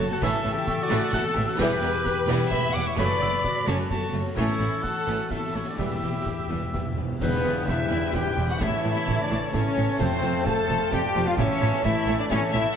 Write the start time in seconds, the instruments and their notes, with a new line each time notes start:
Already playing: harp F#2 A3 A4 F#5 A5 C#6, clarinet F#4, french horn section A4, oboe A5, flute A5
0.00 harp F#4
0.10 harp C#3, french horn section F#4, violin section A4, oboe F#5
0.21 double bass section A1, harp A2, cello section A2, viola section E3 A3, trombone section E3 C#4, violin section A3 C#4 A4, french horn section E4, clarinet A4, oboe E5, concert bass drum, snare
0.33 harp E3
0.44 double bass section A1, cello section A2, viola section E3 A3, violin section A3 C#4, snare
0.53 french horn section E4, harp E4, violin section G4, oboe E5, snare
0.67 harp A4, flute C#6, concert bass drum, snare
0.82 violin section F#4, french horn section D5, oboe D5
0.89 double bass section A1, cello section A2, viola section E3 A3, violin section A3 C#4, harp E5, flute F#6, snare
1.02 harp A5
1.13 double bass section A1, cello section A2, viola section E3 A3, violin section A3 C#4 A4, french horn section F#4, harp E5, oboe F#5, flute E6, concert bass drum, snare
1.25 harp C#5
1.35 double bass section A1, cello section A2, viola section E3 A3, violin section A3 G4, french horn section E4, harp E4, oboe E5
1.47 harp C#4, french horn section F#4, violin section A4, oboe F#5
1.58 double bass section E1, harp E2, cello section E2, trombone section E3 B3, viola section E3 G3, violin section B3 E4 B4, french horn section G4, clarinet B4, oboe G5, flute D6, concert bass drum, snare, crash
1.71 harp B2, snare
1.82 double bass section E1, cello section E2, viola section E3 G3, harp B3, violin section B3 E4, snare
1.94 harp E4
2.06 harp G4, clarinet B4, concert bass drum, snare
2.18 harp B4
2.27 double bass section E1, cello section E2, viola section E3 G3, violin section B3 E4, clarinet E4, harp E5, snare
2.40 harp G5
2.50 double bass section E1, cello section E2, viola section E3 G3, violin section B3 E4 E5, french horn section B4, harp E5, oboe B5, concert bass drum, snare
2.63 harp B4
2.73 double bass section E1, cello section E2, viola section E3 G3, violin section G3 B3 F#5, harp E4, french horn section D5, oboe D6
2.86 harp B3, french horn section C#5, violin section E5, oboe C#6
2.96 double bass section F#1, cello section F#2, harp F#2, trombone section C#3 A3, viola section F#3 A3, violin section A3 C#4 D5, french horn section B4, oboe B5, flute C#6, concert bass drum, snare
3.09 harp C#3
3.19 double bass section F#1, cello section F#2, viola section F#3 A3, violin section A3 C#4, harp A3, flute E6, snare
3.33 snare
3.44 clarinet F#4, harp F#4, flute D6, concert bass drum, snare
3.56 harp A4
3.66 double bass section F#1, cello section F#2, viola section F#3 A3, violin section A3 C#4 C#5, french horn section A4, harp C#5, oboe A5, flute C#6, snare
3.80 harp F#5
3.88 double bass section F#1, cello section F#2, viola section F#3 A3, violin section A3 C#4 C#5, clarinet F#4, harp C#5, oboe A5, flute C#6, concert bass drum, snare
3.94 french horn section A4
4.03 harp A4
4.13 double bass section F#1, cello section F#2, viola section F#3 A3, violin section A3, harp C#4
4.26 harp A3
4.36 double bass section A1, cello section A2, harp A2, viola section E3 A3, trombone section E3 A3, violin section A3 C#4 E4, french horn section C#4, clarinet A4, oboe C#5, flute E6, concert bass drum, snare
4.49 harp E3, snare
4.60 double bass section A1, cello section A2, viola section E3 A3, harp A3, violin section A3 C#4, snare
4.72 harp C#4
4.83 harp E4, french horn section F#4, violin section A4, oboe F#5, concert bass drum, snare
4.96 harp A4
5.06 double bass section A1, cello section A2, viola section E3 A3, violin section A3 C#4, harp C#5, snare
5.19 harp E5
5.30 double bass section A1, cello section A2, viola section E3 A3, violin section A3 C#4 A4, french horn section E4, clarinet A4, harp C#5, oboe E5, flute E6, concert bass drum, snare
5.43 harp A4
5.53 double bass section A1, cello section A2, viola section E3 A3, violin section A3 E4, harp C#4, french horn section C#4, oboe C#5
5.67 harp A3, french horn section D4, violin section F#4, oboe D5
5.77 double bass section E1, harp E2, cello section E2, viola section E3 G3, trombone section E3 G3, violin section B3 G4, french horn section E4, clarinet G4, oboe E5, flute E6, concert bass drum, snare
5.85 timpani E2
5.90 timpani E2, harp B2
6.00 double bass section E1, timpani E2, cello section E2, viola section E3 G3, harp G3, violin section B3
6.09 timpani E2
6.14 timpani E2, harp B3
6.23 timpani E2, harp E4, concert bass drum, snare
6.31 timpani E2
6.38 timpani E2, harp G4
6.47 timpani E2, cello section E2, viola section E3 G3, violin section B3, harp B4
6.51 double bass section E1, timpani E2
6.61 timpani E2, harp E5
6.70 double bass section E1, timpani E2, viola section E3 G3, harp B4
6.74 cello section E2, timpani E2, violin section B3, concert bass drum, snare
6.86 timpani E2, harp G4
6.93 timpani E2, violin section G3
6.97 double bass section E1, cello section E2, timpani E2, viola section E3 G3, harp B3
7.08 timpani E2, harp G3
7.20 double bass section E1, harp E2, cello section E2, trombone section E3 G3, viola section G3 E4, french horn section B3, clarinet B4, violin section B4 E5, flute B4, oboe G5, concert bass drum, snare, crash, tam-tam
7.32 harp G3, snare
7.44 double bass section E1, cello section E2, viola section G3 E4, harp B3, violin section B4 E5, snare
7.56 harp E4
7.67 double bass section E1, cello section E2, viola section G3 E4, french horn section E4, harp G4, clarinet B4, violin section B4 E5, flute E5, oboe G5, concert bass drum, snare
7.79 harp B4
7.90 double bass section E1, cello section E2, viola section G3 E4, violin section B4 E5, harp E5, snare
8.03 harp B4
8.13 double bass section E1, cello section E2, viola section G3 E4, harp G4, french horn section G4, violin section B4 E5 G5, clarinet B4, oboe G5, flute G5, concert bass drum, snare
8.26 harp E4
8.36 double bass section E1, cello section E2, viola section G3 E4, harp B3, violin section B4 E5, snare
8.49 harp G3, french horn section F#4, violin section F#5, flute F#5, snare
8.59 double bass section A1, harp A2, cello section A2, viola section A3 E4, trombone section A3, french horn section E4, violin section C#5 E5, clarinet C#5, flute E5, oboe A5, concert bass drum, snare
8.72 harp A3
8.83 double bass section A1, cello section A2, harp C#3, viola section A3 E4, violin section C#5 E5
8.92 french horn section E4, flute E5, violin section E5
8.96 harp E4, snare
9.06 double bass section A1, cello section A2, viola section A3 E4, harp A4, violin section C#5 E5, concert bass drum
9.19 flute D5, harp C#6
9.24 french horn section D4, violin section D5
9.30 double bass section A1, cello section A2, viola section A3 E4, violin section C#5 E5, harp E5, snare
9.43 harp C#5
9.53 double bass section A1, cello section A2, viola section A3 E4, french horn section C#4, harp A4, violin section C#5 E5, flute C#5, clarinet C#5, oboe A5, concert bass drum, snare
9.65 harp E4
9.76 double bass section A1, cello section A2, viola section A3 E4, harp C#4, violin section C#5 E5, snare
9.89 harp A3, snare
9.99 double bass section F1, harp F2, cello section F2, trombone section F3, viola section A3 F4, french horn section C4, flute C5, violin section C5 F5 A5, clarinet C5, oboe A5, concert bass drum, snare, crash
10.12 harp A3, snare
10.22 double bass section F1, cello section F2, viola section A3 F4, harp F4, violin section F5 A5, snare
10.34 harp A4
10.45 double bass section F1, cello section F2, viola section A3 F4, harp F4, french horn section A4, clarinet C5, violin section F5 A5, flute A5, oboe A5, concert bass drum, snare
10.58 harp F5
10.69 double bass section F1, cello section F2, viola section A3 F4, violin section F5 A5, harp A5, snare
10.82 harp F5
10.91 double bass section F1, cello section F2, viola section A3 F4, french horn section G4, harp A4, clarinet D5, violin section F5 G5 A5, flute G5, concert bass drum, snare
11.05 harp F4
11.15 double bass section F1, cello section F2, viola section A3 F4, harp A3, violin section F5 A5, snare
11.27 harp C3, french horn section F4, flute F5, violin section F5, snare
11.37 double bass section A1, cello section A2, harp A2, trombone section E3 A3, viola section A3 E4, french horn section C#4, flute C#5, violin section C#5 E5, clarinet E5, oboe A5, concert bass drum, snare
11.50 harp C#4
11.61 double bass section A1, cello section A2, viola section A3 E4, harp E4, violin section C#5 E5
11.73 harp A4, snare
11.84 double bass section A1, cello section A2, viola section A3 E4, french horn section E4, harp C#5, violin section C#5 E5, clarinet E5, flute E5, oboe A5, concert bass drum
11.97 harp E5
12.08 double bass section A1, cello section A2, viola section A3 E4, violin section C#5 E5, harp A5, snare
12.19 french horn section D4, flute D5, violin section D5, harp E5
12.30 double bass section A1, cello section A2, viola section A3 E4, french horn section C#4, harp C#5, flute C#5, violin section C#5 E5, clarinet E5, oboe A5, concert bass drum, snare
12.42 harp A4
12.53 double bass section A1, cello section A2, viola section A3 E4, harp E4, french horn section E4, violin section C#5 E5, flute E5, snare
12.65 harp C#4, snare